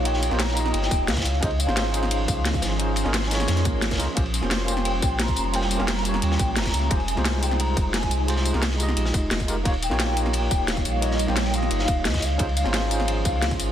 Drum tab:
RD |x---x---x---x---x---x---xxxxx---|x-x-x---x---x---x---x---x---x---|x---x---x---x---x---x---x-xxx---|x-x-x---x---x---x---x---x---x---|
HH |x---x---x---x---x---x---x---x---|x---x---x---x---x---x---x---x---|x---x---x---x---x-x-x---x-x-x---|x---x---x---x---x---x---x---x---|
TB |----x-------x-------x-----x-x---|----x-------x-------x-----x-x---|----x-------x-x-----x-----x-x---|----x-------x-------x-----x-x---|
SD |--o---o-o-o---o---o-----oooo----|------o-o-----o---------o---o---|------o-o-o-o-o-o-o-----o-oo----|------o-o-----o---------o-------|
BD |--------------------o-----o-----|o-------------------o-----o-----|--------------------o-----o-----|o-------------------o-----o-----|

RD |x---x---x---x---x---x---xxxxx---|x-x-x---x---x---x---x---x---x---|x---x---x---x---x---x---x---x---|x-x-x---x---x---x---x---x---x---|
HH |x---x---x---x---x---x---x---x---|x---x---x---x---x---x---x---x---|x---x---x---x---x---x---x---x---|x---x---x---x---x---x---x---x---|
TB |----x-------x-------x-----x-x---|----x-------x-------x-----x-x---|----x-------x-------x-----x-x---|----x-------x-------x-----x-x---|
SD |--o---o-o-o---o---o-----oooo----|------o-o-----o---------o-------|--o---o-o-o---o---o-----o-------|------o-o-----o---------o-------|
BD |--------------------o-----o-----|o-------------------o-----o-----|--------------------o-----o-----|o-------------------o-----o-----|

RD |x---x---x---x---x---x---xxxxx---|x-x-x---x---x---x---x---x---x---|
HH |x---x---x---x---x---x---x---x---|x---x---x---x---x---x---x---x---|
TB |----x-------x-------x-----x-x---|----x-------x-------x-----x-x---|
SD |--o---o-o-o---o---o-----oooo----|------o-o-----o---------o-------|
BD |--------------------o-----o-----|o-------------------o-----o-----|